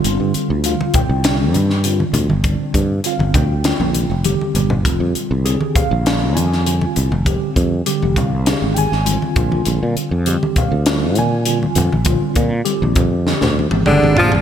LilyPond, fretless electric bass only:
\new Staff \with { instrumentName = "Fretless electric bass" } { \clef bass \time 4/4 \key f \dorian \tempo 4 = 100 g,,16 g,16 r16 d,8 r8 c,8. g,4 d,16 g,,16~ | g,,16 r16 g,8 r16 g,,16 d,8. bes,,8 f,,8 r16 g,,8 | f,,16 f,16 r16 c,8 r8 bes,,8. f,4 c,16 f,,16~ | f,,16 r16 f,8 r16 f,,16 c,8. aes,,8 aes,,8 r16 bes,,8 |
bes,,16 bes,16 r16 f,8 r8 d,8. bes,4 f,16 bes,,16~ | bes,,16 r16 bes,8 r16 bes,,16 f,8. d,8 aes,,16 g,,16 aes,,16 bes,,16 c,16 | }